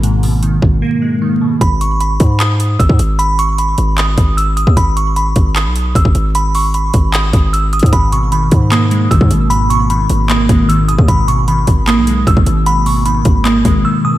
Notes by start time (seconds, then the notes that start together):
Already playing: G#1 G#2 B2 D#3 G#3 A#3
0.03 G#2, closed hi-hat
0.23 B2, open hi-hat
0.43 D#3, closed hi-hat
0.62 G#1, kick
0.82 A#3
1.02 G#3
1.22 D#3
1.41 B2
1.61 G#1 B5, kick, closed hi-hat
1.81 C#6, closed hi-hat
2.01 B5, closed hi-hat
2.20 G#2, kick, closed hi-hat
2.40 D#6, clap, closed hi-hat
2.60 closed hi-hat
2.79 G#1 E6, kick, closed hi-hat
2.89 G#2, kick
2.99 G#1, closed hi-hat
3.19 B5, closed hi-hat
3.39 C#6, closed hi-hat
3.58 B5, closed hi-hat
3.78 G#1, closed hi-hat
3.98 D#6, clap, closed hi-hat
4.18 G#1, kick, closed hi-hat
4.37 E6, closed hi-hat
4.57 D#6, closed hi-hat
4.67 D#2, kick
4.77 G#1 B5, kick, closed hi-hat
4.97 C#6, closed hi-hat
5.16 B5, closed hi-hat
5.36 G#1, kick, closed hi-hat
5.56 D#6, clap, closed hi-hat
5.66 B1
5.76 closed hi-hat
5.95 G#1 E6, kick, closed hi-hat
6.05 G#1, kick
6.15 G#1, closed hi-hat
6.35 B5, closed hi-hat
6.55 C#6, open hi-hat
6.74 B5, closed hi-hat
6.94 G#1, kick, closed hi-hat
7.13 D#6, clap, closed hi-hat
7.33 G#1, kick, closed hi-hat
7.53 E6, closed hi-hat
7.73 D#6, closed hi-hat
7.79 G#2, kick, closed hi-hat
7.86 closed hi-hat
7.93 G#1 G#2 B5, kick, closed hi-hat
8.12 B2 C#6, closed hi-hat
8.32 D#3 B5, closed hi-hat
8.51 G#2, kick, closed hi-hat
8.71 A#3 D#6, clap, closed hi-hat
8.91 G#3, closed hi-hat
9.11 G#1 D#3 E6, kick, closed hi-hat
9.21 G#2, kick
9.31 G#1 B2, closed hi-hat
9.50 G#2 B5, closed hi-hat
9.70 B2 C#6, closed hi-hat
9.90 D#3 B5, closed hi-hat
10.09 G#1, closed hi-hat
10.29 A#3 D#6, clap, closed hi-hat
10.49 G#1 G#3, kick, closed hi-hat
10.69 D#3 E6, closed hi-hat
10.88 B2 D#6, closed hi-hat
10.99 D#2, kick
11.08 G#1 G#2 B5, kick, closed hi-hat
11.28 B2 C#6, closed hi-hat
11.48 D#3 B5, closed hi-hat
11.67 G#1, kick, closed hi-hat
11.87 A#3 D#6, clap, closed hi-hat
11.97 B1
12.07 G#3, closed hi-hat
12.27 G#1 D#3 E6, kick, closed hi-hat
12.37 G#1, kick
12.46 G#1 B2, closed hi-hat
12.66 G#2 B5, closed hi-hat
12.86 B2 C#6, open hi-hat
13.06 D#3 B5, closed hi-hat
13.25 G#1, kick, closed hi-hat
13.45 A#3 D#6, clap, closed hi-hat
13.65 G#1 G#3, kick, closed hi-hat
13.85 D#3 E6
14.04 B2 D#6